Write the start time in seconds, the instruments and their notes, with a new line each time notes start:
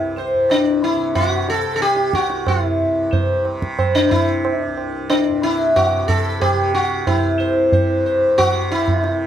Already playing: tanpura C2 G2 C3, sitar E4
0.17 sitar C5, tabla na
0.35 tanpura G2
0.50 sitar D4, tabla na
0.84 sitar E4
0.96 tanpura C3
1.15 sitar F#4, tabla na, tabla ge
1.49 sitar A4, tabla te
1.57 tanpura C3
1.76 sitar A4
1.81 sitar G4, tabla te
1.96 tabla te
2.13 sitar F#4, tabla ke
2.20 tanpura C2
2.30 tabla te
2.47 sitar E4, tabla na, tabla ge
2.81 tanpura G2
3.13 sitar C5, tabla tin, tabla ge
3.44 tanpura C3, tabla na
3.62 tabla ke
3.79 sitar C5, tabla na, tabla ge
3.95 sitar D4
4.05 tanpura C3
4.11 sitar E4, tabla ge
4.45 tabla na
4.63 tanpura C2, sitar D4
4.77 tabla na
5.10 sitar D4, tabla na
5.29 tanpura G2
5.43 sitar E4
5.76 sitar F#4, tabla na, tabla ge
5.91 tanpura C3
6.08 sitar A4, tabla ge
6.41 sitar G4, tabla na, tabla ge
6.53 tanpura C3
6.74 sitar F#4, tabla te
7.07 sitar E4, tabla na, tabla ge
7.14 tanpura C2
7.40 sitar C5
7.72 tanpura G2, sitar C5, tabla tin, tabla ge
8.06 sitar C5
8.37 tanpura C3, sitar F#4, tabla na, tabla ge
8.71 sitar E4, tabla te
8.88 tabla ge
8.99 tanpura C3
9.04 tabla te